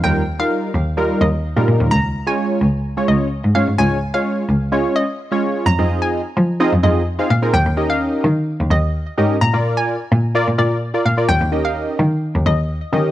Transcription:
X:1
M:4/4
L:1/16
Q:1/4=128
K:Ebmix
V:1 name="Synth pluck"
g2 z f3 z4 e z4 z | b2 z a3 z4 e z3 f z | a2 z f3 z4 e z4 z | b2 z a3 z4 e z3 f z |
g2 z f3 z4 e z4 z | b2 z a3 z4 =d z3 f z | g2 z f3 z4 e z4 z |]
V:2 name="Synth keys"
[G,EFB]2 z [G,EFB]3 z2 [G,EFB]3 z2 [G,EFB]3 | z3 [A,DFd]3 z3 [A,DFd]3 z2 [A,DFd] z | [A,DFd]2 z [A,DFd]3 z2 [A,DFd]3 z2 [A,DFd]3 | z [CEFAe]4 z3 [CEFAe] z [CEFAe]2 z [CEFAf] z [CEFAB] |
z2 [DEGBe]4 z8 [DEGBe]2 | z [FB=d]4 z3 [FBd] z [FBd]2 z [FBd] z [FBd] | z2 [DEGBe]4 z8 [DEGBe]2 |]
V:3 name="Cello" clef=bass
E,,2 z4 E,,4 E,,3 B,, B,, E,, | D,,2 z4 D,,4 D,,3 A,, A,, A,, | D,,2 z4 D,,2 z8 | F,, F,,4- F,, F,2 z F,, F,,4 B,,2 |
E,, E,,4- E,, E,2 z E,, E,,4 A,,2 | B,, B,,4- B,, B,,2 z B,, B,,4 B,,2 | E,, E,,4- E,, E,2 z E,, E,,4 E,2 |]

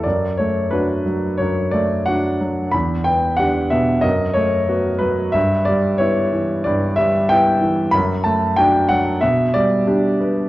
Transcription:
X:1
M:4/4
L:1/8
Q:1/4=91
K:D
V:1 name="Grand piano"
d c B2 c d f2 | b g f e _e c2 B | e d c2 d e g2 | b a g f e d3 |]
V:2 name="Grand piano"
F,, A, [DF] F, F,, A, [DF] F, | E,, B, [DG] B,, F,, A, [B,F] F, | G,, G, [B,E] E, G,, G, [B,E] E, | F,, A, [DF] F, B,, G, [DG] B, |]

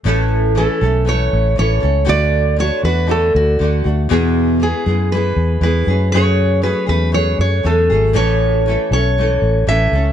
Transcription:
X:1
M:4/4
L:1/16
Q:"Swing 16ths" 1/4=119
K:A
V:1 name="Steel-string acoustic guitar"
z4 A4 c4 c4 | d4 c2 B2 A2 F4 z2 | z4 G4 B4 B4 | c4 B2 B2 c2 c2 A4 |
c6 c6 e4 |]
V:2 name="Nylon-string guitar"
[A,,E,A,CA]4 [E,A,CA]2 [A,CA]2 [E,A,CA]4 [E,A,CA]2 [A,CA]2 | [D,A,DF]4 [D,A,DF]2 [A,DF]2 [D,A,DF]4 [D,A,DF]2 [A,DF]2 | [E,,B,,E,G,B,G]4 [E,G,B,G]2 [E,G,B,G]2 [E,G,B,G]4 [E,G,B,G]2 [F,A,CG]2 | [F,,C,F,A,CG]4 [F,A,CG]2 [F,A,CG]2 [F,A,CG]4 [F,A,CG]2 [F,A,CG]2 |
[A,,E,A,CA]4 [E,A,CA]2 [A,CA]2 [E,A,CA]4 [E,A,CA]2 [A,CA]2 |]
V:3 name="Fingered electric bass" clef=bass
A,,,4- A,,, z B,,,4 A,,,2 A,,,2 C,,2 | D,,4- D,, z E,,4 D,,2 D,,2 D,,2 | E,,4- E,, z F,,4 E,,2 E,,2 F,,2- | F,,4- F,, z E,,4 F,,2 E,,2 G,,,2 |
A,,,4- A,,, z B,,,4 A,,,2 A,,,2 C,,2 |]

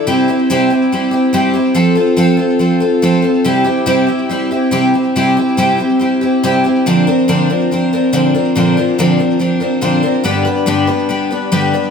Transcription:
X:1
M:4/4
L:1/8
Q:1/4=141
K:C
V:1 name="Twelve-string acoustic guitar"
[C,G,CEG] [CEG] [C,G,CEG] [CEG] [G,CEG] [CEG] [C,G,CEG] [CEG] | [F,CFA] [CFA] [F,CFA] [CFA] [F,CFA] [CFA] [F,CFA] [CFA] | [C,G,CEG] [CEG] [C,G,CEG] [CEG] [G,CEG] [CEG] [C,G,CEG] [CEG] | [C,G,CEG] [CEG] [C,G,CEG] [CEG] [G,CEG] [CEG] [C,G,CEG] [CEG] |
[_B,,D,F,CD_B] [F,CDB] [B,,D,F,CDB] [F,CDB] [F,CDB] [F,CDB] [B,,D,F,CDB] [F,CDB] | [_B,,D,F,CD_B] [F,CDB] [B,,D,F,CDB] [F,CDB] [F,CDB] [F,CDB] [B,,D,F,CDB] [F,CDB] | [G,,D,G,B,DB] [G,B,DB] [G,,D,G,B,DB] [G,B,DB] [G,B,DB] [G,B,DB] [G,,D,G,B,DB] [G,B,DB] |]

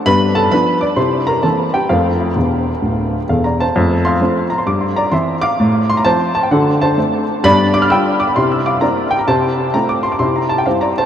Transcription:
X:1
M:4/4
L:1/16
Q:"Swing" 1/4=130
K:F
V:1 name="Grand piano"
[=B=b]2 [Aa]2 [Bb]2 [dd']2 [cc']2 [_B_b]2 [Aa]2 [Gg]2 | [Fcf]12 (3[Af]2 [db]2 [ca]2- | [ca]2 [fc']4 b c' d' c' [db]2 [ec']2 [fd']2- | [fd']2 c' b [ca]2 a g [A^f]2 [ca]2 z4 |
[d=b]2 d' f' [ge']2 d' b c' e' [fd']2 [d_b]2 g b | [ca]4 b d' c' d' c' b a g (3[cf]2 [db]2 [ca]2 |]
V:2 name="Grand piano"
[G,,=B,]4 [F,B,D]4 [C,E]4 [E,_B,C]4 | [F,,A,]4 [E,,,E,,]4 [D,,,D,,]4 [E,,,E,,]4 | [F,,A,]4 [F,A,C]4 G,,4 [E,C]4 | A,,4 [F,C]4 [D,^F]4 [A,CD]4 |
[G,,=B,]4 [G,DF]4 [C,E]4 [_B,CE]4 | C,4 [A,CF]4 [C,E]4 [G,CE]4 |]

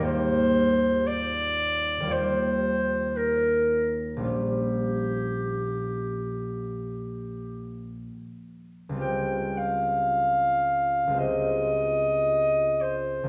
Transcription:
X:1
M:4/4
L:1/16
Q:1/4=55
K:Bbdor
V:1 name="Clarinet"
c4 =d4 c4 B3 z | G12 z4 | g2 f6 e6 c2 |]
V:2 name="Harp"
[E,,G,B,CEFG]8 [E,,G,B,FG]8 | [B,,,G,DFG]16 | [D,,G,CFG]8 [D,,A,CFG]8 |]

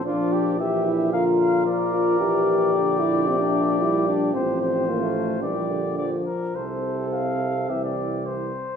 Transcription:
X:1
M:4/4
L:1/16
Q:1/4=111
K:F
V:1 name="Trumpet"
d4 e4 f2 f2 d4- | d16 | c2 c6 d4 d2 B2 | c4 f4 e d3 c4 |]
V:2 name="Flugelhorn"
F2 G2 G4 B4 B4- | B4 G12- | G4 F4 G6 z2 | A8 G6 z2 |]
V:3 name="French horn"
D4 G2 E2 F6 F2 | G6 E2 C D3 E2 D2 | C4 B, A,3 G,3 z F,4 | C12- C2 z2 |]
V:4 name="Euphonium" clef=bass
F,4 E,4 D,4 F,4 | E,4 D,4 C,4 G,4 | F,8 E,2 D,4 z2 | C,8 E,6 z2 |]
V:5 name="Tuba" clef=bass
B,,,16 | B,,,16 | A,,,8 B,,,6 z2 | C,,8 C,,6 z2 |]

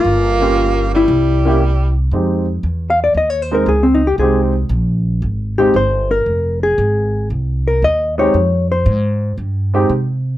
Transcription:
X:1
M:4/4
L:1/16
Q:"Swing" 1/4=116
K:Fm
V:1 name="Hollow-body jazz guitar"
F6 =E8 z2 | z6 f =d e _d c B A C E G | A2 z8 G2 c2 B2- | B2 A6 z2 B2 e2 d2- |
d2 c6 z8 |]
V:2 name="Grand piano"
z2 [B,DFG]6 z2 [B,D=EG]2 z4 | [A,CEG]2 z8 [A,CEB]2 z4 | [A,CEG]2 z8 [A,CEG]2 z4 | z12 z2 [A,CEG]2 |
z8 z2 [A,CEG]2 z4 |]
V:3 name="Tenor saxophone" clef=bass
B,6 G,8 z2 | z16 | z16 | z16 |
z16 |]
V:4 name="Upright bass" clef=bass
G,,,8 C,,8 | F,,4 =E,,4 _E,,4 D,,4 | C,,4 B,,,4 A,,,4 G,,,4 | F,,,4 A,,,4 C,,4 E,,4 |
F,,4 A,,4 G,,4 C,4 |]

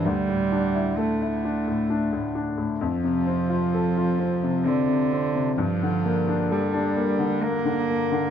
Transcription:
X:1
M:3/4
L:1/16
Q:1/4=65
K:Dm
V:1 name="Grand piano"
D,, A,, D E A E D A,, D A,, D A,, | F,, C, C F A F C C, C C, C C, | G,, D, B, D A D B, D, B, D, B, D, |]
V:2 name="Cello" clef=bass
G,4 A,6 z2 | F,8 D,4 | F,4 G,4 B,4 |]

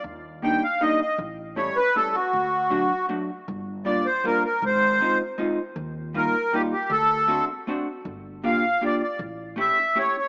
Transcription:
X:1
M:3/4
L:1/8
Q:1/4=157
K:Gm
V:1 name="Accordion"
z2 g f e e | z2 ^c =B A ^F- | ^F4 z2 | z2 d c B B |
c3 z3 | z2 B2 G G | A3 z3 | z2 f2 d d |
z2 =e2 ^c c |]
V:2 name="Hollow-body jazz guitar"
z2 [G,B,DE] z [G,B,DE] z | z2 [G,A,^C=E] z [G,A,CE] z | z2 [^F,A,D^F] z [F,A,DF] z | z2 [G,B,DF] z [G,B,DF] z |
z2 [_A,CEF] z [A,CEF] z | z2 [G,B,EF] z [G,B,EF] z | z2 [A,CD^F] z [A,CDF] z | z2 [B,DFG] z [B,DFG] z |
z2 [A,^C=EG] z [A,CEG] z |]
V:3 name="Upright bass" clef=bass
E,,4 z2 | A,,,4 z2 | D,,4 z2 | G,,,4 z2 |
_A,,,4 z2 | E,,4 z2 | D,,4 z2 | G,,,4 z2 |
A,,,4 z2 |]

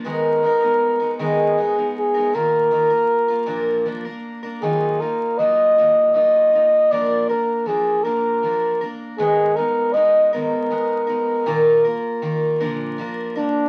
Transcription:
X:1
M:6/8
L:1/16
Q:3/8=53
K:Ebm
V:1 name="Flugelhorn"
B6 A4 A2 | B8 z4 | A2 B2 e4 e4 | =d2 B2 A2 B4 z2 |
A2 B2 e2 B6- | B8 z2 =D2 |]
V:2 name="Steel-string acoustic guitar"
[A,,E,A,CEB]2 [A,CEB] [A,CEB]2 [A,CEB] [A,,E,A,CEB]2 [A,CEB] [A,CEB]2 [A,CEB] | [B,,E,B,FB]2 [E,B,FB] [B,FB]2 [B,FB] [B,,F,B,=DB]2 [F,B,DB] [B,DB]2 [B,DB] | [E,G,B,EF]2 [B,EF]2 [G,B,EF]2 [E,G,B,EF]2 [G,B,EF]2 [B,EF]2 | [B,,F,B,=DB]2 [B,DB]2 [F,B,DB]2 [B,,F,B,DB]2 [F,B,DB]2 [B,DB]2 |
[A,,E,A,CEB]2 [A,CEB]2 [A,CEB]2 [A,,E,A,CEB]2 [A,CEB]2 [A,CEB]2 | [B,,E,B,FB]2 [B,FB]2 [E,B,FB]2 [B,,=D,F,B,=DB]2 [F,B,DB]2 [F,B,DB]2 |]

